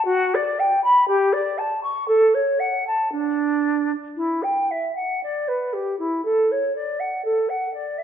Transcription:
0.05 F#4
0.34 D5
0.59 G5
0.84 B5
1.08 G4
1.33 D5
1.58 A5
1.83 C#6
2.08 A4
2.34 C#5
2.59 F#5
2.87 A5
3.12 D4
4.16 E4
4.43 G5
4.71 E5
4.95 F#5
5.23 D5
5.48 B4
5.73 G4
5.99 E4
6.24 A4
6.51 C#5
6.75 D5
7.00 F#5
7.24 A4
7.49 F#5
7.74 D5
7.98 E5

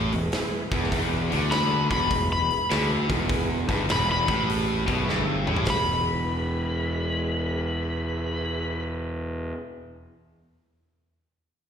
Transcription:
Already playing: A1 A2
0.12 E1 E2 E4 G#4 B4, open hi-hat
0.32 E4 G#4 B4, snare, open hi-hat
0.71 E1 E2 E4 G#4 B4, kick, open hi-hat
0.83 snare
0.90 E1 E2 E4 G#4 B4, kick, open hi-hat
1.30 D2 D3 E4 G#4 B4, open hi-hat
1.50 E4 G#4 B4 B5, snare, open hi-hat
1.90 E1 E2 E4 G#4 C#5 B5, kick, open hi-hat
2.11 E1 E2 E4 G#4 B4, kick, open hi-hat
2.32 B5
2.50 E4 G#4 B4, open hi-hat
2.70 D2 D3 E4 G#4 B4, snare, open hi-hat
3.09 E1 E2 E4 G#4 B4, kick, open hi-hat
3.29 E4 G#4 B4, kick, open hi-hat
3.69 G1 G2 E4 G#4 B4, kick, open hi-hat
3.87 E1 E2 E4 G#4 B4, snare, open hi-hat
3.92 B5
4.12 B5
4.27 A1 A2 E4 G#4 B4, kick, open hi-hat
4.49 E4 G#4 B4, open hi-hat
4.87 B1 B2 E4 G#4 B4, kick, open hi-hat
5.05 G2 E4 G#4 B4 E5
5.09 G1, snare
5.46 A1 A2 E4 G#4 C#5 G#5, mid tom
5.56 floor tom
5.66 E1 E4 G#4 B4, kick, snare, open hi-hat
5.70 B5

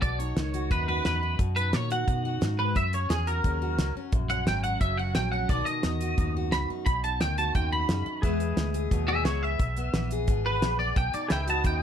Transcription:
Already playing: B3
0.02 B1 B2 D5, kick, closed hi-hat
0.19 D#4 C#5, closed hi-hat
0.37 C#2 D#3, snare, closed hi-hat
0.54 F#4, closed hi-hat
0.71 D#2 F#2 D#4 B4, kick, closed hi-hat
0.88 F#4 B4
1.05 E2 D#3 B4, snare, closed hi-hat
1.23 D#4
1.39 F#2 B2, kick, closed hi-hat
1.56 D#4 B4, closed hi-hat
1.73 A#2 D#3 C#5, snare, closed hi-hat
1.90 F#4 F#5, closed hi-hat
2.08 F#2 B2 D#4, kick, closed hi-hat
2.25 F#4
2.41 G#2 A#2, snare, closed hi-hat
2.59 G#2 B4
2.75 F#2 E5, kick, closed hi-hat
2.93 C#4 C#5, closed hi-hat
3.10 E2 F#3 G#4, snare, closed hi-hat
3.27 F#4 A#4, closed hi-hat
3.44 D#2 C#3 C#4, kick, closed hi-hat
3.62 F#4
3.78 C#2 F#3, snare, closed hi-hat
3.96 C#4, muted fingered electric bass stroke
4.12 A#1 F#2, kick, closed hi-hat
4.30 C#4 F#5, closed hi-hat
4.47 G#1 F#3 G5, snare, closed hi-hat
4.64 F#4 F#5, closed hi-hat
4.81 F#1 C#3 C#4 E5, kick, closed hi-hat
4.98 F#4 F#5
5.15 A#1 F#3 G5, snare, closed hi-hat
5.32 C#4 F#5
5.49 B1 B2 D#3 B3 D#4 F#4 D5, kick, closed hi-hat
5.65 D#4 D#5, closed hi-hat
5.83 E2 D#3, snare, closed hi-hat
6.01 F#4, closed hi-hat
6.18 D#2 F#2 D#4, kick, closed hi-hat
6.37 F#4
6.52 C#2 D#3 B5, snare, closed hi-hat
6.70 D#4, muted fingered electric bass stroke
6.86 B1 B2 B5, kick, closed hi-hat
7.04 D#4 A5, closed hi-hat
7.20 D2 D#3 G5, snare, closed hi-hat
7.38 F#4 A5, closed hi-hat
7.55 D#2 F#2 D#4 G5, kick, closed hi-hat
7.72 F#4 B5
7.89 F#2 C#3, snare, closed hi-hat
8.06 D#3, muted fingered electric bass stroke
8.22 E2 E3 G#3 B3 G#4 B4 E5, kick, closed hi-hat
8.40 B3, closed hi-hat
8.57 D2, snare, closed hi-hat
8.74 G#4, closed hi-hat
8.91 D#2 B2 B3, kick, closed hi-hat
9.08 G#4 E5
9.24 C#2 E3 E4 C#5, snare, closed hi-hat
9.43 B3 E5
9.59 B1 E2, kick, closed hi-hat
9.77 B3, closed hi-hat
9.93 A#1 E3, snare, closed hi-hat
10.11 G#4, closed hi-hat
10.28 G#1 B2 B3, kick, closed hi-hat
10.46 G#4 B4
10.62 A#1 E3, snare, closed hi-hat
10.79 B3 D5
10.96 B1 B2 G5, kick, closed hi-hat
11.13 D#4 D5, muted fingered electric bass stroke, closed hi-hat
11.28 C#2 D#3 G#4 B4 E5 G5, snare, closed hi-hat
11.47 F#4 D#5 A5, closed hi-hat
11.53 F#4
11.64 D#2 F#2 D#4 G5, kick, closed hi-hat

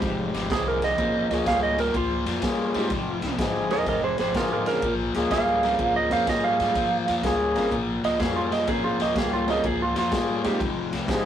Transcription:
Already playing: F3 G#3 C4 D#4 F4 G4
0.02 F1 F2 C3, kick, snare, ride
0.34 G#1 F2 C3, snare, ride
0.50 C2 F2 D3 G#3 C4 D#4 F4 G#4, kick, snare, ride
0.68 A#4
0.82 F2 D3 D#5, snare, ride
0.98 A#1 A#2 F3 A#3 C4 C#4 F4 G#4, kick, ride
1.30 C#2 A#2 F3 G#3 A#3 C#4 F4 G#4, snare, ride
1.46 C#2 A#2 G3 F5, kick, snare, ride
1.63 D#5
1.78 A#2 G3 A#4, snare, ride
1.94 C#2 A#2 F3 F4, kick, ride
2.26 F2 A#2 F3, snare, ride
2.42 G2 A#2 G3 G#3 A#3 C#4 F4 G#4, kick, snare, ride
2.74 G#2 A#2 G3 G#3 C4 D#4 F4 G4, snare, ride
2.90 F1 F2 C3, kick, snare, ride
3.22 C2 F2 C3, snare, ride
3.38 G#1 F2 D3 G#3 C4 D#4 F4 G#4, kick, snare, ride
3.70 D#2 F2 D3 A#4 D#5, snare, ride
3.86 F1 F2 C3 A#4 D#5, kick, snare, ride
4.04 G#4 C5
4.18 G#1 F2 C3 G#4 C5, snare, ride
4.34 A1 F2 D3 G#3 C4 D#4 F4 G#4 A#4, kick, snare, ride
4.52 F4 A#4
4.66 F2 D3 A#3 C4 C#4 F4 G#4 A#4, snare, ride
4.82 A#1 A#2 F3, kick, ride
5.14 C#2 A#2 F3 G#3 A#3 C#4 F4 G#4, snare, ride
5.31 C#2 A#2 G3 F5, kick, snare, ride
5.62 A#2 G3 A#3 C4 C#4 F4 G#4, snare, ride
5.79 C#2 A#2 F3, kick, ride
5.96 D#5
6.10 F2 A#2 F3 A#3 C4 C#4 F4 G#4 F5, snare, ride
6.27 G2 A#2 G3 G#3 A#3 C#4 F4 G#4 D#5, kick, snare, ride
6.44 F5
6.60 G#2 A#2 G3, snare, ride
6.75 G2 A#2 F3, kick, snare, ride
7.07 F2 A#2 F3, snare, ride
7.23 C#2 A#2 G3 G#3 A#3 C#4 F4 G#4, kick, snare, ride
7.55 G#1 A#2 G3 A#3 C4 C#4 F4 G#4, snare, ride
7.71 A#1 A#2 F3, kick, ride
8.03 C#2 A#2 F3 D#5, snare, ride
8.19 F2 A#2 G3 G#3 A#3 C#4 F4 G#4, kick, snare, ride
8.36 F4
8.51 A#2 G3 D#5, snare, ride
8.67 A#1 A#2 F3 A#3 C4 C#4 F4 G#4, kick, snare, ride
8.84 F4
8.99 C#2 A#2 F3 G3 A#3 C#4 F4 G4 D#5, snare, ride
9.16 C#2 A#2 G3 G#4, kick, snare, ride
9.33 F4
9.47 A#2 G3 A#3 C4 C#4 F4 G#4 D#5, snare, ride
9.64 C#2 A#2 F3 G#4, kick, ride
9.82 F4
9.95 F2 A#2 F3 F4, snare, ride
10.12 G2 A#2 G3 G#3 A#3 C#4 F4 G#4, kick, snare, ride
10.43 G#2 A#2 G3 G#3 C4 D#4 F4 G4, snare, ride
10.60 F1 F2 C3, kick, ride
10.92 C2 F2 C3, snare, ride
11.07 G#1 F2 D3 G#3 C4 D#4 F4 G4 G#4, kick, snare, ride

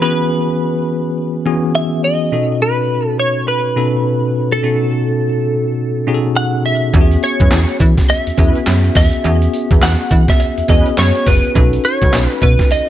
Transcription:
Already playing: C#4 F#4 G#4
0.00 E3 B3 C#4 F#4 G#4 B4
1.45 E3 B3 C#4 F#4 G#4
1.75 E5
2.04 D#5
2.32 B2 C#4 D#4 F#4 A4
2.62 B4
3.08 A4
3.20 C#5
3.48 B4
3.76 B2 C#4 D#4 F#4 A4
4.52 A4
4.62 B2 C#4 D#4 F#4 A4
6.07 B2 C#4 D#4 F#4 G#4
6.14 A4
6.37 F#5
6.66 E5
6.93 E2 B3 C#4 F#4 G4, kick, closed hi-hat, cowbell
7.01 G#4
7.11 closed hi-hat
7.23 C#5, closed hi-hat, tambourine
7.40 F#2 C#4 E4 G#4 B4, kick, closed hi-hat
7.51 E2, snare, clap, closed hi-hat, tambourine, cowbell
7.69 closed hi-hat
7.80 E3, kick, closed hi-hat, tambourine, cowbell
7.98 kick, snare, closed hi-hat
8.09 E5, closed hi-hat, tambourine, cowbell
8.27 E2, closed hi-hat
8.37 E2 B3 C#4 E4 F#4 G#4 B4, kick, closed hi-hat, tambourine, cowbell
8.55 closed hi-hat
8.66 F#2, snare, clap, closed hi-hat, tambourine, cowbell
8.84 closed hi-hat
8.95 E2 E5, kick, snare, open hi-hat, tambourine
9.13 closed hi-hat
9.24 E2 B3 C#4 F#4 G#4, closed hi-hat, cowbell
9.42 closed hi-hat
9.53 closed hi-hat, tambourine
9.71 E2 C#4 E4 G#4 B4, kick, closed hi-hat
9.82 E2 F#5, snare, clap, closed hi-hat, tambourine, cowbell
9.99 closed hi-hat
10.11 E3, kick, closed hi-hat, tambourine, cowbell
10.28 E5, kick, snare, closed hi-hat
10.40 closed hi-hat, tambourine, cowbell
10.58 E2, closed hi-hat
10.68 E2 B3 C#4 E4 F#4 G#4 B4 D#5, kick, closed hi-hat, tambourine, cowbell
10.86 closed hi-hat
10.97 F#2 C#5, snare, clap, closed hi-hat, tambourine, cowbell
11.15 closed hi-hat
11.27 F#1 B4, kick, snare, open hi-hat, tambourine
11.45 closed hi-hat
11.55 B1 C#4 D#4 F#4 A4, kick, closed hi-hat, cowbell
11.73 closed hi-hat
11.85 C#5, closed hi-hat, tambourine
12.01 C#2 D#4 F#4 A4 B4, kick, closed hi-hat
12.13 B1, snare, clap, closed hi-hat, tambourine, cowbell
12.30 B4, closed hi-hat
12.42 B2 B4, kick, closed hi-hat, tambourine, cowbell
12.59 kick, snare, closed hi-hat
12.71 D#5, closed hi-hat, tambourine, cowbell

